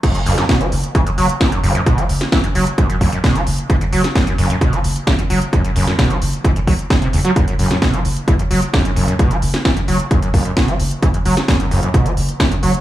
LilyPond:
<<
  \new Staff \with { instrumentName = "Acid bass" } { \clef bass \time 4/4 \tempo 4 = 131 fis,16 fis,16 fis,16 fis,16 b,16 fis16 r8 e16 fis,16 fis16 r16 fis,16 fis,16 fis,16 fis,16 | b,16 fis16 r8 e16 fis,16 fis16 r16 fis,16 fis,16 fis,16 fis,16 b,16 fis16 r8 | e16 fis,16 fis16 r16 fis,16 fis,16 fis,16 fis,16 b,16 fis16 r8 e16 fis,16 fis16 r16 | fis,16 fis,16 fis,16 fis,16 b,16 fis16 r8 e16 fis,16 fis16 r16 g,16 bis,16 e,16 fis16 |
fis,16 fis,16 fis,16 fis,16 b,16 fis16 r8 e16 fis,16 fis16 r16 fis,16 fis,16 fis,16 fis,16 | b,16 fis16 r8 e16 fis,16 fis16 r16 fis,16 fis,16 fis,16 fis,16 b,16 fis16 r8 | e16 fis,16 fis16 r16 fis,16 fis,16 fis,16 fis,16 b,16 fis16 r8 e16 fis,16 fis16 r16 | }
  \new Staff \with { instrumentName = "Sub bass" } { \clef bass \time 4/4 r16 fis,,16 fis,,16 r8 fis,,16 fis,,16 r8 fis,,16 fis,,16 r8 fis,,16 fis,,16 r16 | r16 fis,,16 fis,,16 r8 fis,,16 fis,,16 r8 fis,,16 fis,,16 r8 fis,,16 fis,,16 r16 | r16 fis,,16 fis,,16 r8 fis,,16 fis,,16 r8 fis,,16 fis,,16 r8 fis,,16 fis,,16 r16 | r16 fis,,16 fis,,16 r8 fis,,16 fis,,16 r8 fis,,16 fis,,16 r8 fis,,16 fis,,16 r16 |
r16 fis,,16 fis,,16 r8 fis,,16 fis,,16 r8 fis,,16 fis,,16 r8 fis,,16 fis,,16 r16 | r16 fis,,16 fis,,16 r8 fis,,16 fis,,16 r8 fis,,16 fis,,16 r8 fis,,16 fis,,16 r16 | r16 fis,,16 fis,,16 r8 fis,,16 fis,,16 r8 fis,,16 fis,,16 r8 fis,,16 fis,,16 r16 | }
  \new DrumStaff \with { instrumentName = "Drums" } \drummode { \time 4/4 <cymc hh bd>16 hh16 hho16 <hh sn>16 <hh bd sn>16 hh16 hho16 hh16 <hh bd>16 hh16 hho16 hh16 <hh bd sn>16 hh16 hho16 hh16 | <hh bd>16 hh16 hho16 <hh sn>16 <hh bd sn>16 hh16 hho16 hh16 <hh bd>16 hh16 <hho bd>16 hh16 <hh bd sn>16 hh16 hho16 hh16 | <hh bd>16 hh16 hho16 <hh sn>16 <hh bd sn>16 hh16 hho16 hh16 <hh bd>16 hh16 hho16 hh16 <hh bd sn>16 hh16 hho16 hh16 | <hh bd>16 hh16 hho16 <hh sn>16 <hh bd sn>16 hh16 hho16 hh16 <hh bd>16 hh16 <hho bd>16 hh16 <hh bd sn>16 hh16 hho16 hh16 |
<hh bd>16 hh16 hho16 <hh sn>16 <hh bd sn>16 hh16 hho16 hh16 <hh bd>16 hh16 hho16 hh16 <hh bd sn>16 hh16 hho16 hh16 | <hh bd>16 hh16 hho16 <hh sn>16 <hh bd sn>16 hh16 hho16 hh16 <hh bd>16 hh16 <hho bd>16 hh16 <hh bd sn>16 hh16 hho16 hh16 | <hh bd>16 hh16 hho16 <hh sn>16 <hh bd sn>16 hh16 hho16 hh16 <hh bd>16 hh16 hho16 hh16 <hh bd sn>16 hh16 hho16 hh16 | }
>>